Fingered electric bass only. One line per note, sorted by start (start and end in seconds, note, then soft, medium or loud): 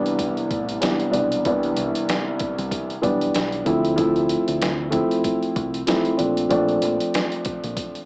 0.51 0.77 A1 medium
1.14 1.40 B1 medium
1.46 1.72 C2 loud
1.77 1.92 C2 medium
2.59 2.70 C2 medium
3.04 3.30 B1 medium
3.35 3.62 B1 medium
3.67 4.35 D2 medium
4.48 5.01 D2 medium
5.56 5.83 C2 medium
6.20 6.46 A#1 medium
6.51 6.77 A#1 loud
6.83 6.98 A#1 loud
7.64 7.75 A#1 medium